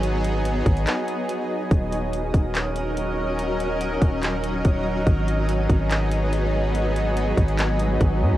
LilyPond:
<<
  \new Staff \with { instrumentName = "Synth texture" } { \time 4/4 \key gis \minor \tempo 4 = 143 r1 | <cis' fis' dis''>1~ | <cis' fis' dis''>1 | <gis fis' b'>1~ |
<gis fis' b'>1 | }
  \new Staff \with { instrumentName = "Ambient pad" } { \time 4/4 \key gis \minor << { <b gis' dis''>1 | <cis' ais' dis''>1~ | <cis' ais' dis''>1 | <b gis' dis''>1~ |
<b gis' dis''>1 | } \\ { <fis dis'>1 | <fis dis'>1~ | <fis dis'>1~ | <fis dis'>1~ |
<fis dis'>1 | } >> }
  \new Staff \with { instrumentName = "808-style bass" } { \clef bass \time 4/4 \key gis \minor gis,,4. gis,,8 r2 | dis,,4. dis,,2~ dis,,8~ | dis,,4. dis,,4. dis,,4 | gis,,4. gis,,2~ gis,,8~ |
gis,,4. gis,,4. gis,,8 gis,16 gis,,16 | }
  \new DrumStaff \with { instrumentName = "Drums" } \drummode { \time 4/4 hh8 hh8 hh8 <hh bd>16 hh16 <hc hh>8 hh8 hh4 | <hh bd>8 hh8 hh8 <hh bd>8 <hc hh>8 hh8 hh4 | hh8 hh8 hh8 <hh bd>8 <hc hh>8 hh8 <hh bd>4 | <hh bd>8 hh8 hh8 <hh bd>8 <hc hh>8 hh8 hh4 |
hh8 hh8 hh8 <hh bd>16 hh16 <hc hh>8 hh8 <hh bd>4 | }
>>